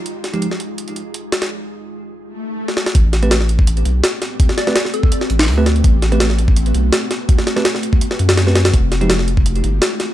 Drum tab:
HH |x-xxx-x-xxx-x-xx|----------------|x-xxx-x-xxx-x-x-|x-x-x-x-x-x-o-xx|
SD |--o--o--------oo|-------------ooo|--o-oo------o-o-|-ooooo---o-o--o-|
BD |----------------|----------------|o------o--------|o------o--------|

HH |x-xxx-x-xxx-x-x-|x-x-x-x-x-x-x-xx|x-xxx-x-xxx-x-x-|
SD |--o-oo------o-o-|-ooooo---o-ooooo|--o-oo------o-o-|
BD |o------o--------|o------o--------|o------o--------|